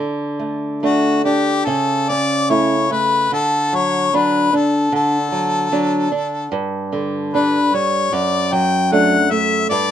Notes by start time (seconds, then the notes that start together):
Already playing: D3
0.39 A3
0.83 A3 D4 F#4
1.24 D4 G4
1.64 C#3 A4
2.08 C#4 D5
2.49 A3 E4 C#5
2.91 A3 B4
3.32 D3 A4
3.73 F#3 C#5
4.13 F#3 D4 B4
4.53 D4 A4
4.92 D3 A4
5.32 F#3
5.72 F#3 D4
6.12 D4
6.52 G2
6.93 D3
7.34 G3 D4 B4
7.74 G3 C#5
8.13 F#2 D5
8.52 F#3 G5
8.92 A3 D4 F#5
9.31 A3 E5
9.69 G2 D5